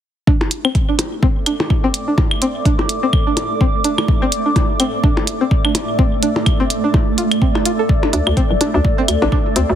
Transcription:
0.27 9.75 A3 medium
0.27 0.35 D4 medium
0.27 kick loud
0.34 9.75 A4 medium
0.41 percussion blips soft
0.51 closed hi-hat medium
0.65 0.67 C4 medium
0.65 claves medium
0.75 kick loud
0.75 closed hi-hat soft
0.89 0.95 D4 medium
0.89 9.75 D5 medium
0.99 9.75 D6 medium
0.99 closed hi-hat medium
0.99 percussion blips soft
1.23 1.26 C4 loud
1.23 kick loud
1.46 1.55 D4 medium
1.46 closed hi-hat medium
1.46 claves medium
1.60 percussion blips soft
1.70 kick medium
1.84 1.86 C4 loud
1.94 closed hi-hat medium
2.08 2.14 D4 medium
2.18 kick loud
2.18 percussion blips soft
2.31 claves medium
2.42 2.45 C4 loud
2.42 closed hi-hat medium
2.65 2.74 D4 medium
2.65 kick loud
2.65 closed hi-hat soft
2.79 percussion blips soft
2.89 closed hi-hat medium
3.03 3.05 C4 loud
3.13 kick loud
3.13 claves medium
3.27 3.33 D4 medium
3.37 closed hi-hat medium
3.37 percussion blips soft
3.61 3.64 C4 loud
3.61 kick loud
3.84 3.93 D4 medium
3.84 closed hi-hat medium
3.98 percussion blips soft
3.98 claves medium
4.08 kick loud
4.22 4.24 C4 loud
4.32 closed hi-hat medium
4.46 4.52 D4 medium
4.56 kick loud
4.56 closed hi-hat soft
4.56 percussion blips soft
4.80 4.83 C4 loud
4.80 closed hi-hat medium
4.80 claves medium
5.03 5.12 D4 medium
5.03 kick loud
5.17 percussion blips soft
5.27 closed hi-hat medium
5.41 5.43 C4 loud
5.51 kick loud
5.65 5.71 D4 medium
5.65 claves medium
5.75 closed hi-hat medium
5.75 percussion blips soft
5.99 6.02 C4 loud
5.99 kick loud
6.23 6.31 D4 medium
6.23 closed hi-hat medium
6.36 percussion blips soft
6.46 kick loud
6.46 closed hi-hat soft
6.46 claves medium
6.60 6.62 C4 loud
6.70 closed hi-hat medium
6.84 6.90 D4 medium
6.94 kick loud
6.94 percussion blips soft
7.18 7.23 F4 medium
7.18 closed hi-hat medium
7.32 closed hi-hat soft
7.32 claves medium
7.42 7.47 C4 medium
7.42 kick loud
7.55 percussion blips soft
7.66 7.71 F4 medium
7.66 closed hi-hat medium
7.79 7.85 A4 medium
7.89 kick loud
8.03 8.09 D4 medium
8.03 percussion blips soft
8.13 8.21 D2 medium
8.13 8.19 D4 medium
8.13 closed hi-hat medium
8.27 8.33 D2 medium
8.27 claves medium
8.37 8.40 C4 loud
8.37 kick loud
8.37 closed hi-hat soft
8.51 8.57 D1 medium
8.61 8.69 D4 medium
8.61 closed hi-hat medium
8.61 percussion blips soft
8.74 8.80 D2 loud
8.74 8.78 D4 medium
8.85 kick loud
8.98 9.01 C4 loud
9.08 9.17 D2 medium
9.08 closed hi-hat medium
9.08 claves medium
9.22 9.28 A1 medium
9.22 9.28 D4 medium
9.22 percussion blips soft
9.32 9.38 D4 medium
9.32 kick medium
9.56 9.64 D2 medium
9.56 9.59 C4 loud
9.56 closed hi-hat medium
9.70 9.75 D2 loud

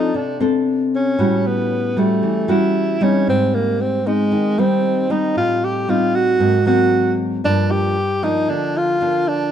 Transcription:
0.00 0.11 F3 medium
0.00 0.36 C4 medium
0.00 0.36 D4 medium
0.00 0.17 D#4 medium
0.00 0.36 A4 medium
0.14 1.16 C3 medium
0.14 0.41 D4 medium
0.40 1.14 C4 medium
0.40 1.14 D4 medium
0.40 1.15 A4 medium
0.95 1.48 C#4 medium
1.19 2.20 A2 medium
1.19 1.92 G3 soft
1.19 1.93 C#4 soft
1.19 1.93 F#4 medium
1.47 2.00 B3 medium
1.97 2.45 G3 medium
1.97 2.52 A3 medium
1.97 2.45 C#4 medium
1.97 2.45 F#4 medium
2.23 3.24 E3 medium
2.48 2.96 G3 medium
2.48 2.97 C#4 medium
2.48 3.05 E4 medium
2.48 2.97 F#4 medium
3.01 4.01 G3 medium
3.01 4.01 C4 medium
3.01 3.28 C#4 medium
3.01 4.01 D#4 medium
3.27 4.29 G#2 medium
3.27 3.56 C4 medium
3.55 3.83 A#3 medium
3.81 4.08 C4 medium
4.06 4.61 G#3 medium
4.06 4.54 C4 medium
4.06 4.54 D#4 medium
4.32 5.33 D#3 medium
4.58 5.06 G3 medium
4.58 5.06 C4 medium
4.58 5.13 C4 medium
4.58 5.06 D#4 medium
5.10 5.84 G3 medium
5.10 5.84 C4 medium
5.10 5.84 D#4 medium
5.10 5.36 D#4 medium
5.36 6.37 A2 medium
5.36 5.66 F4 loud
5.64 5.91 G4 medium
5.88 6.38 G3 medium
5.88 6.38 C4 medium
5.88 6.38 D#4 medium
5.88 6.16 F4 medium
6.15 6.66 F#4 loud
6.39 7.41 G#2 medium
6.39 6.55 F#3 soft
6.39 6.55 A#3 soft
6.39 6.55 C4 medium
6.65 7.40 F#3 medium
6.65 7.40 A#3 medium
6.65 7.40 C4 medium
6.65 7.15 F#4 medium
7.44 8.46 G2 medium
7.44 7.96 F3 medium
7.44 7.96 A#3 medium
7.44 7.73 D4 loud
7.44 7.96 D4 medium
7.71 8.26 G4 loud
8.23 8.97 F3 soft
8.23 8.97 A#3 medium
8.23 8.97 D4 medium
8.23 8.51 D#4 loud
8.49 9.50 D3 medium
8.49 8.79 D4 medium
8.77 9.30 F4 loud
9.01 9.49 F3 medium
9.01 9.49 A#3 medium
9.01 9.49 D4 medium
9.28 9.52 D4 medium

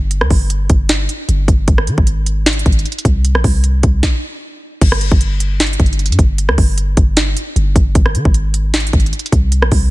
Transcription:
0.00 0.23 G1 loud
0.11 closed hi-hat medium
0.21 0.30 D2 loud
0.21 cross-stick medium
0.30 0.68 G1 loud
0.30 kick medium
0.30 open hi-hat medium
0.50 closed hi-hat medium
0.70 1.07 G1 loud
0.70 kick loud
0.70 closed hi-hat medium
0.89 snare loud
0.89 closed hi-hat medium
1.09 closed hi-hat medium
1.29 1.47 G1 loud
1.29 closed hi-hat medium
1.48 1.67 G1 loud
1.48 kick loud
1.48 closed hi-hat medium
1.68 1.89 G#1 loud
1.68 kick loud
1.68 closed hi-hat medium
1.78 cross-stick medium
1.87 1.97 D#3 loud
1.87 closed hi-hat medium
1.98 2.63 G#1 loud
1.98 kick medium
2.07 closed hi-hat medium
2.26 closed hi-hat medium
2.46 snare loud
2.46 closed hi-hat medium
2.53 closed hi-hat medium
2.59 closed hi-hat medium
2.66 2.85 G#1 loud
2.66 kick loud
2.66 closed hi-hat soft
2.72 closed hi-hat soft
2.79 closed hi-hat medium
2.85 closed hi-hat medium
2.92 closed hi-hat medium
2.99 closed hi-hat medium
3.05 3.37 C2 loud
3.05 kick loud
3.05 closed hi-hat medium
3.25 closed hi-hat medium
3.35 3.44 A#1 loud
3.35 cross-stick medium
3.44 3.82 C2 loud
3.44 kick medium
3.44 open hi-hat medium
3.64 closed hi-hat medium
3.83 4.02 C2 loud
3.83 kick loud
3.83 closed hi-hat medium
4.03 kick loud
4.03 snare medium
4.81 5.10 G1 loud
4.81 kick loud
4.81 closed hi-hat medium
4.81 crash loud
4.92 cross-stick medium
5.01 closed hi-hat medium
5.12 5.77 G1 loud
5.12 kick loud
5.21 closed hi-hat medium
5.40 closed hi-hat medium
5.60 snare loud
5.60 closed hi-hat medium
5.67 closed hi-hat medium
5.73 closed hi-hat medium
5.80 6.11 G1 loud
5.80 kick loud
5.80 closed hi-hat soft
5.86 closed hi-hat soft
5.93 closed hi-hat medium
5.99 closed hi-hat medium
6.06 6.18 G2 loud
6.06 closed hi-hat medium
6.12 closed hi-hat medium
6.19 6.50 G1 loud
6.19 kick loud
6.19 closed hi-hat medium
6.38 closed hi-hat medium
6.49 6.57 D2 loud
6.49 cross-stick medium
6.58 6.96 G1 loud
6.58 kick medium
6.58 open hi-hat medium
6.78 closed hi-hat medium
6.97 7.35 G1 loud
6.97 kick loud
6.97 closed hi-hat medium
7.17 snare loud
7.17 closed hi-hat medium
7.37 closed hi-hat medium
7.56 7.75 G1 loud
7.56 closed hi-hat medium
7.76 7.94 G1 loud
7.76 kick loud
7.76 closed hi-hat medium
7.95 8.16 G#1 loud
7.95 kick loud
7.95 closed hi-hat medium
8.06 cross-stick medium
8.15 8.25 D#3 loud
8.15 closed hi-hat medium
8.25 8.91 G#1 loud
8.25 kick loud
8.34 closed hi-hat medium
8.54 closed hi-hat medium
8.74 snare loud
8.74 closed hi-hat medium
8.80 closed hi-hat medium
8.87 closed hi-hat medium
8.93 9.12 G#1 loud
8.93 kick medium
8.93 closed hi-hat soft
9.00 closed hi-hat medium
9.06 closed hi-hat medium
9.13 closed hi-hat medium
9.19 closed hi-hat medium
9.26 closed hi-hat medium
9.32 9.64 C2 loud
9.32 kick loud
9.32 closed hi-hat medium
9.52 closed hi-hat medium
9.62 9.71 A#1 loud
9.62 cross-stick medium
9.71 9.90 C2 loud
9.71 kick loud
9.71 open hi-hat medium

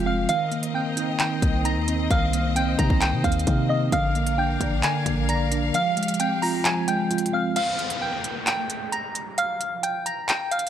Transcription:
0.00 0.27 F1 loud
0.00 0.30 F3 loud
0.00 0.27 G#3 medium
0.00 0.31 G#3 medium
0.00 0.06 C4 medium
0.00 0.30 F4 medium
0.00 0.27 G4 medium
0.00 0.27 F5 medium
0.06 0.29 C4 medium
0.06 0.27 F5 medium
0.06 0.27 F6 medium
0.29 1.19 D#3 loud
0.29 3.89 C4 medium
0.29 2.09 A#4 medium
0.29 3.89 D#5 medium
0.29 0.72 F5 loud
0.29 0.72 F6 medium
0.29 closed hi-hat medium
0.51 1.41 A#3 medium
0.51 closed hi-hat soft
0.63 closed hi-hat medium
0.74 1.87 C4 medium
0.74 1.17 G5 medium
0.74 1.17 G6 medium
0.97 1.64 D#4 medium
0.97 closed hi-hat medium
1.20 2.10 D#3 medium
1.20 1.62 G5 medium
1.20 1.63 G6 medium
1.20 clap loud
1.20 closed hi-hat medium
1.42 1.78 C2 loud
1.42 2.32 A#3 medium
1.42 kick loud
1.42 closed hi-hat medium
1.65 2.78 D#4 medium
1.65 1.86 A#5 medium
1.65 1.86 A#6 medium
1.65 closed hi-hat medium
1.77 2.09 D#2 loud
1.88 2.55 C4 medium
1.88 closed hi-hat medium
2.11 2.76 C2 loud
2.11 3.00 D#3 loud
2.11 3.91 C5 medium
2.11 2.53 F5 loud
2.11 2.54 F6 medium
2.11 kick loud
2.11 closed hi-hat medium
2.33 3.23 A#3 medium
2.33 closed hi-hat medium
2.56 3.69 C4 medium
2.56 2.77 G5 medium
2.56 2.77 G6 medium
2.56 closed hi-hat medium
2.79 2.90 C3 loud
2.79 3.46 D#4 medium
2.79 2.99 A#5 medium
2.79 3.00 A#6 medium
2.79 kick loud
2.79 closed hi-hat medium
2.90 3.14 C2 loud
2.90 kick loud
3.01 3.92 D#3 medium
3.01 3.22 G5 medium
3.01 3.22 G6 medium
3.01 clap loud
3.01 closed hi-hat medium
3.13 3.24 C3 loud
3.24 3.46 D#2 loud
3.24 3.92 A#3 medium
3.24 3.67 F5 medium
3.24 3.67 F6 medium
3.24 kick loud
3.24 closed hi-hat medium
3.32 closed hi-hat medium
3.39 closed hi-hat medium
3.47 3.91 C3 loud
3.47 3.93 D#4 medium
3.47 kick medium
3.47 closed hi-hat medium
3.69 3.93 C4 loud
3.69 3.90 D#5 medium
3.69 3.90 D#6 medium
3.92 4.58 A#1 loud
3.92 4.83 D3 loud
3.92 5.72 D4 medium
3.92 5.72 A#4 medium
3.92 4.35 F5 loud
3.92 7.52 F5 medium
3.92 4.36 F6 medium
3.92 kick loud
3.92 closed hi-hat medium
4.15 5.05 A#3 medium
4.15 closed hi-hat soft
4.27 closed hi-hat medium
4.38 5.51 D4 loud
4.38 4.81 G5 medium
4.38 4.81 G6 medium
4.61 4.82 A#1 loud
4.61 5.28 D5 medium
4.61 kick loud
4.61 closed hi-hat medium
4.83 5.74 D3 medium
4.83 5.26 G#5 medium
4.83 5.26 G#6 medium
4.83 clap loud
4.83 closed hi-hat medium
5.06 5.72 A#1 loud
5.06 5.74 A#3 medium
5.06 kick loud
5.06 closed hi-hat medium
5.29 5.74 D5 loud
5.29 5.49 A#5 medium
5.29 5.50 A#6 medium
5.29 closed hi-hat medium
5.52 5.74 D4 medium
5.52 closed hi-hat medium
5.74 6.64 F3 medium
5.74 7.54 G#3 medium
5.74 7.54 G4 medium
5.74 6.17 F5 loud
5.74 6.18 F6 medium
5.74 closed hi-hat medium
5.97 6.87 G#3 medium
5.97 closed hi-hat medium
6.03 closed hi-hat medium
6.08 closed hi-hat medium
6.14 closed hi-hat medium
6.20 7.32 C4 medium
6.20 6.40 G5 medium
6.20 6.41 G6 medium
6.20 closed hi-hat medium
6.42 7.10 F4 medium
6.42 6.63 A#5 medium
6.42 6.63 A#6 medium
6.42 open hi-hat medium
6.65 7.56 F3 medium
6.65 6.86 G#5 medium
6.65 6.86 G#6 medium
6.65 clap loud
6.65 closed hi-hat medium
6.88 7.56 G#3 medium
6.88 7.31 G5 medium
6.88 7.31 G6 medium
6.88 closed hi-hat medium
7.11 7.56 F4 medium
7.11 closed hi-hat medium
7.18 closed hi-hat medium
7.26 closed hi-hat medium
7.33 7.56 C4 medium
7.33 7.54 F5 medium
7.33 7.54 F6 medium
7.56 7.99 F5 loud
7.56 7.99 F6 medium
7.56 closed hi-hat medium
7.56 crash medium
7.56 downlifter medium
7.79 closed hi-hat soft
7.90 closed hi-hat medium
8.02 8.44 G5 medium
8.02 8.45 G6 medium
8.24 closed hi-hat medium
8.47 8.90 G5 medium
8.47 8.90 G6 medium
8.47 clap loud
8.47 closed hi-hat medium
8.70 closed hi-hat medium
8.92 9.13 A#5 medium
8.92 9.13 A#6 medium
8.92 closed hi-hat medium
9.15 closed hi-hat medium
9.38 9.81 F5 loud
9.38 9.81 F6 medium
9.38 closed hi-hat medium
9.61 closed hi-hat medium
9.83 10.04 G5 medium
9.83 10.04 G6 medium
9.83 closed hi-hat medium
10.06 10.26 A#5 medium
10.06 10.27 A#6 medium
10.06 closed hi-hat medium
10.29 10.49 G5 medium
10.29 10.50 G6 medium
10.29 clap loud
10.29 closed hi-hat medium
10.51 10.69 F5 medium
10.51 10.69 F6 medium
10.51 closed hi-hat medium
10.59 closed hi-hat medium

